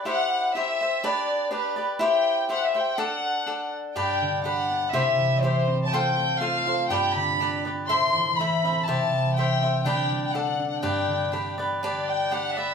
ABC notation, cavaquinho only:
X:1
M:2/4
L:1/8
Q:1/4=122
K:G
V:1 name="Cavaquinho"
[EGce]2 [EGce] [Gce] | [DGBd]2 [DGBd] [GBd] | [EGce]2 [EGce] [Gce] | [DAdf]2 [DAdf]2 |
[DGBd]2 [DGBd]2 | [EGce]2 [EGce]2 | [=FAc=f]2 [FAcf] [Acf] | [DGBd]2 [DGBd] [GBd] |
[EAce]2 [EAce] [Ace] | [EGce]2 [EGce] [Gce] | [DGBd]2 [DAdf]2 | [DGBd]2 [DGBd] [GBd] |
[DGBd]2 [DGBd] [GBd] |]